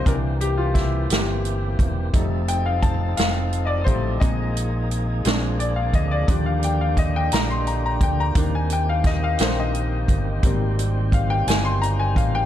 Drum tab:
HH |xxxxxx|xxxxxx|xxxxxx|xxxxxx|
SD |--oo--|---o--|---o--|---o--|
BD |o-o--o|o-o--o|o----o|o-o--o|

HH |xxxxxx|xxxxxx|
SD |--oo--|---o--|
BD |o-o--o|o-o--o|